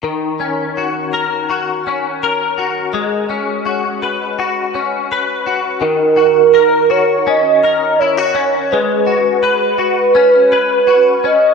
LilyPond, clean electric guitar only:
\new Staff \with { instrumentName = "Clean electric guitar" } { \time 4/4 \key dis \phrygian \tempo 4 = 83 dis8 cis'8 fis'8 ais'8 fis'8 cis'8 ais'8 fis'8 | gis8 cis'8 fis'8 b'8 fis'8 cis'8 b'8 fis'8 | dis8 fis'8 ais'8 fis'8 cis'8 ais'8 e'16 fis'16 cis'8 | gis8 fis'8 b'8 fis'8 cis'8 b'8 fis'8 cis'8 | }